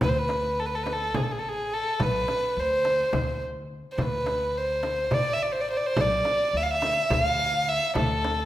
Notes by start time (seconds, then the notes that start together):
0.01 D2 B4, frame drum, darbuka dum
0.09 C5
0.18 B4
0.29 darbuka tek, frame drum
0.59 A4
0.66 B4
0.75 A4
0.83 B4, darbuka tek, frame drum
0.92 A4
1.14 A1 G#4, frame drum, darbuka dum
1.23 A4
1.31 G#4
1.39 A4
1.44 darbuka ka
1.48 G#4
1.74 A4
2.00 B1 B4, frame drum, darbuka dum
2.28 darbuka tek, frame drum
2.57 D2 C5, darbuka ka
2.85 darbuka tek, frame drum
3.13 D2, frame drum, darbuka dum
3.42 darbuka ka
3.92 C5
3.98 D2, frame drum, darbuka dum
4.02 B4
4.26 darbuka tek, frame drum
4.57 C5
4.83 darbuka tek, frame drum
5.11 A1 D5, frame drum, darbuka dum
5.33 E5
5.40 D5, darbuka ka
5.52 C5
5.61 D5
5.70 C5
5.77 D5
5.86 C5
5.96 B1, frame drum, darbuka dum
6.01 D5
6.25 darbuka tek, frame drum
6.53 D2 E5
6.63 F5
6.70 E5
6.82 darbuka tek, frame drum
7.10 D2 E5, frame drum, darbuka dum
7.24 F5
7.39 darbuka ka
7.68 E5
7.95 D2 A4, frame drum, darbuka dum
8.24 darbuka tek, frame drum